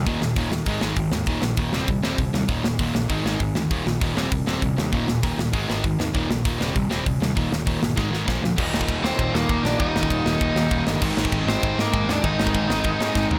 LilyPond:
<<
  \new Staff \with { instrumentName = "Overdriven electric guitar" } { \time 4/4 \key ees \major \tempo 4 = 197 r1 | r1 | r1 | r1 |
r1 | r1 | r1 | r4. <c' c''>4 <bes bes'>4 <d' d''>8 |
<ees' ees''>2.~ <ees' ees''>8 r8 | r4. <c' c''>4 <bes bes'>4 <d' d''>8 | <ees' ees''>2.~ <ees' ees''>8 r8 | }
  \new Staff \with { instrumentName = "Overdriven electric guitar" } { \clef bass \time 4/4 \key ees \major r1 | r1 | r1 | r1 |
r1 | r1 | r1 | <ees, bes, ees g bes ees'>2~ <ees, bes, ees g bes ees'>8 <ees, bes, ees g bes ees'>8 <ees, bes, ees g bes ees'>4 |
<ees, bes, ees g bes ees'>2~ <ees, bes, ees g bes ees'>8 <ees, bes, ees g bes ees'>8 <ees, bes, ees g bes ees'>4 | <aes, ees aes c' ees'>2~ <aes, ees aes c' ees'>8 <aes, ees aes c' ees'>8 <aes, ees aes c' ees'>4 | <aes, ees aes c' ees'>2~ <aes, ees aes c' ees'>8 <aes, ees aes c' ees'>8 <aes, ees aes c' ees'>4 | }
  \new Staff \with { instrumentName = "Distorted electric guitar" } { \clef bass \time 4/4 \key ees \major <ees, bes, ees>8 <ees, bes,>8 <ees, bes, ees>8 <ees, bes,>8 <aes, ees aes>8 <aes, ees aes>8 <aes, ees>8 <aes, ees>8 | <ees, bes, ees>8 <ees, bes,>8 <ees, bes, ees>8 <c g c'>8 <c g>8 <c g c'>8 <c g>8 <c g>8 | <ees, bes, ees>8 <ees, bes,>8 <ees, bes, ees>8 <ees, bes,>8 <aes, ees aes>8 <aes, ees aes>8 <aes, ees>8 <aes, ees>8 | <ees, bes, ees>8 <ees, bes,>8 <ees, bes, ees>8 <c g c'>8 <c g>8 <c g c'>8 <c g>8 <c g>8 |
<ees, bes, ees>8 <ees, bes,>8 <ees, bes, ees>8 <ees, bes,>8 <aes, ees aes>8 <aes, ees aes>8 <aes, ees>8 <aes, ees>8 | <ees, bes, ees>8 <ees, bes,>8 <ees, bes, ees>8 <c g c'>8 <c g>8 <c g c'>8 <c g>8 <c g>8 | <ees, bes, ees>8 <ees, bes,>8 <ees, bes, ees>8 <ees, bes,>8 <aes, ees aes>8 <aes, ees aes>8 <bes, f bes>8 <bes, f>8 | <ees, bes, ees g bes ees'>4. <ees, bes, ees g bes ees'>4. <ees, bes, ees g bes ees'>4 |
<ees, bes, ees g bes ees'>4. <ees, bes, ees g bes ees'>4. <ees, bes, ees g bes ees'>4 | <aes, ees aes c' ees'>4. <aes, ees aes c' ees'>4. <aes, ees aes c' ees'>4 | <aes, ees aes c' ees'>4. <aes, ees aes c' ees'>4. <aes, ees aes c' ees'>4 | }
  \new Staff \with { instrumentName = "Overdriven electric guitar" } { \clef bass \time 4/4 \key ees \major <ees, bes, ees>8 <ees, bes,>8 <ees, bes, ees>8 <ees, bes,>8 <aes, ees aes>8 <aes, ees aes>8 <aes, ees>8 <aes, ees>8 | <ees, bes, ees>8 <ees, bes,>8 <ees, bes, ees>8 <c g c'>8 <c g>8 <c g c'>8 <c g>8 <c g>8 | <ees, bes, ees>8 <ees, bes,>8 <ees, bes, ees>8 <ees, bes,>8 <aes, ees aes>8 <aes, ees aes>8 <aes, ees>8 <aes, ees>8 | <ees, bes, ees>8 <ees, bes,>8 <ees, bes, ees>8 <c g c'>8 <c g>8 <c g c'>8 <c g>8 <c g>8 |
<ees, bes, ees>8 <ees, bes,>8 <ees, bes, ees>8 <ees, bes,>8 <aes, ees aes>8 <aes, ees aes>8 <aes, ees>8 <aes, ees>8 | <ees, bes, ees>8 <ees, bes,>8 <ees, bes, ees>8 <c g c'>8 <c g>8 <c g c'>8 <c g>8 <c g>8 | <ees, bes, ees>8 <ees, bes,>8 <ees, bes, ees>8 <ees, bes,>8 <aes, ees aes>8 <aes, ees aes>8 <bes, f bes>8 <bes, f>8 | <ees, bes, ees>1 |
<ees, bes, ees>1 | <aes, ees aes>1 | <aes, ees aes>1 | }
  \new Staff \with { instrumentName = "Picked electric bass" } { \clef bass \time 4/4 \key ees \major ees,,8 ees,,8 ees,,8 ees,,8 aes,,8 aes,,8 aes,,8 ees,8 | ees,,8 bes,,8 ees,,8 ees,,8 ees,,8 ees,,8 ees,,8 ees,8 | ees,,8 ees,,8 ees,,8 bes,,8 aes,,8 aes,,8 aes,,8 d,8 | ees,,8 bes,,8 ees,,8 ees,,8 ees,,8 ees,,8 ees,,8 ees,8 |
ees,,8 ees,,8 ees,,8 ees,,8 aes,,8 aes,,8 aes,,8 ees,8 | ees,,8 bes,,8 ees,,8 ees,,8 ees,,8 ees,,8 ees,,8 ees,8 | ees,,8 ees,,8 ees,,8 g,,8 aes,,8 aes,,8 bes,,8 d,8 | ees,,8 ees,,8 ees,,8 ees,,8 ees,,8 ees,8 ees,,8 bes,,8 |
ees,,8 ees,,8 ees,,8 ees,,8 ees,,8 ees,8 ees,,8 g,,8 | aes,,8 aes,,8 aes,,8 aes,,8 aes,,8 aes,8 aes,,8 ees,8 | aes,,8 aes,,8 aes,,8 aes,,8 aes,,8 aes,8 aes,,8 ees,8 | }
  \new DrumStaff \with { instrumentName = "Drums" } \drummode { \time 4/4 <hho bd>8 sn8 <hho bd>8 sn8 <hho bd>8 sn8 <hho bd>8 sn8 | <hho bd>8 sn8 <hho bd>8 sn8 <hho bd>8 sn8 <hho bd>8 sn8 | <hho bd>8 sn8 <hho bd>8 sn8 <hho bd>8 sn8 <hho bd>8 sn8 | <hho bd>8 sn8 <hho bd>8 sn8 <hho bd>8 sn8 <hho bd>8 sn8 |
<hho bd>8 sn8 <hho bd>8 sn8 <hho bd>8 sn8 <hho bd>8 sn8 | <hho bd>8 sn8 <hho bd>8 sn8 <hho bd>8 sn8 <hho bd>8 sn8 | <hho bd>8 sn8 <hho bd>8 sn8 <bd sn>8 sn8 <bd sn>8 sn8 | <cymc bd>8 sn16 bd16 <bd cymr>8 sn8 <bd cymr>8 sn8 <bd cymr>8 sn8 |
<bd cymr>8 sn16 bd16 <bd cymr>8 sn8 <bd cymr>8 sn8 <bd cymr>8 sn8 | <cymc bd>8 sn16 bd16 <bd cymr>8 sn8 <bd cymr>8 sn8 <bd cymr>8 sn8 | <bd cymr>8 sn16 bd16 <bd cymr>8 sn8 <bd cymr>8 sn8 <bd sn>8 tomfh8 | }
>>